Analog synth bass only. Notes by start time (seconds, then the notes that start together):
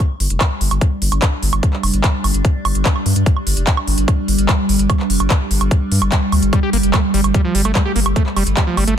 0.20 G1
0.30 F1
0.61 G1
0.71 G1
1.02 G1
1.12 G1
1.43 G1
1.53 G1
1.83 F1
1.94 G1
2.24 G1
2.34 G1
2.65 G1
2.75 G1
3.06 G2
3.16 G2
3.47 G1
3.57 F1
3.88 G1
3.98 G1
4.28 G1
4.39 G1
4.69 G1
4.79 G1
5.10 F1
5.20 G1
5.51 G1
5.61 G1
5.92 G2
6.02 G1
6.32 D2
6.43 G1
6.73 G1
6.83 F1
7.14 G1
7.24 G1
7.55 G1
7.65 G1
7.96 G1
8.06 G1
8.37 F1
8.47 G1
8.77 G1
8.88 G1